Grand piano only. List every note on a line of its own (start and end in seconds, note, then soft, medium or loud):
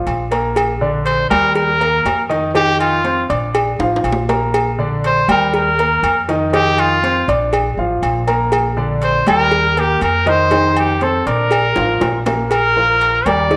0.00 0.22 F3 medium
0.00 0.23 F4 medium
0.00 0.23 F5 medium
0.31 0.72 A#3 medium
0.31 0.72 A#4 medium
0.31 0.72 A#5 medium
0.81 1.22 D3 medium
0.81 1.22 D4 medium
0.81 1.22 D5 medium
1.31 1.71 G3 medium
1.31 1.72 G4 medium
1.31 1.72 G5 medium
1.80 2.21 A#3 medium
1.80 2.21 A#4 medium
1.80 2.21 A#5 medium
2.29 2.50 D#3 medium
2.29 2.50 D#4 loud
2.29 2.50 D#5 medium
2.54 2.96 D#3 medium
2.54 2.96 D#4 medium
2.54 2.96 D#5 medium
3.04 3.25 C4 medium
3.04 3.25 C5 medium
3.04 3.25 C6 medium
3.29 3.70 D4 medium
3.29 3.71 D5 medium
3.29 3.71 D6 medium
3.79 4.20 F3 medium
3.79 4.20 F4 medium
3.79 4.21 F5 medium
4.29 4.70 A#3 medium
4.29 4.70 A#4 medium
4.29 4.70 A#5 medium
4.79 5.20 D3 medium
4.79 5.20 D4 medium
4.79 5.20 D5 medium
5.28 5.69 G3 medium
5.28 5.70 G4 medium
5.28 5.70 G5 medium
5.79 6.20 A#3 medium
5.79 6.20 A#4 medium
5.79 6.20 A#5 medium
6.29 6.49 D#3 medium
6.29 6.49 D#4 medium
6.29 6.49 D#5 medium
6.53 6.94 D#3 medium
6.53 6.94 D#4 medium
6.53 6.94 D#5 medium
7.03 7.24 C4 medium
7.03 7.24 C5 medium
7.03 7.24 C6 medium
7.28 7.69 D4 medium
7.28 7.69 D5 medium
7.28 7.69 D6 medium
7.78 8.19 F3 medium
7.78 8.19 F4 medium
7.78 8.19 F5 medium
8.27 8.68 A#3 medium
8.27 8.69 A#4 medium
8.27 8.69 A#5 medium
8.77 9.18 D3 medium
8.77 9.18 D4 medium
8.77 9.18 D5 medium
9.27 9.68 G3 medium
9.27 9.68 G4 medium
9.27 9.68 G5 medium
9.76 10.18 A#3 medium
9.76 10.18 A#4 medium
9.76 10.18 A#5 medium
10.26 10.47 D#3 medium
10.26 10.47 D#4 loud
10.26 10.47 D#5 medium
10.51 10.92 D#3 medium
10.51 10.92 D#4 medium
10.51 10.93 D#5 medium
11.01 11.22 C4 medium
11.01 11.22 C5 medium
11.01 11.22 C6 medium
11.26 11.67 D4 medium
11.26 11.68 D5 medium
11.26 11.68 D6 medium
11.76 12.17 F3 medium
11.76 12.18 F4 medium
11.76 12.18 F5 medium
12.26 12.47 A#3 medium
12.26 12.47 A#4 medium
12.26 12.47 A#5 medium
12.76 13.17 F3 medium
12.76 13.17 F4 medium
12.76 13.18 A#4 medium
13.27 13.47 G3 medium
13.27 13.47 G4 medium
13.27 13.47 A#4 medium
13.50 13.57 D#3 medium
13.50 13.57 D#4 medium
13.50 13.57 D#5 medium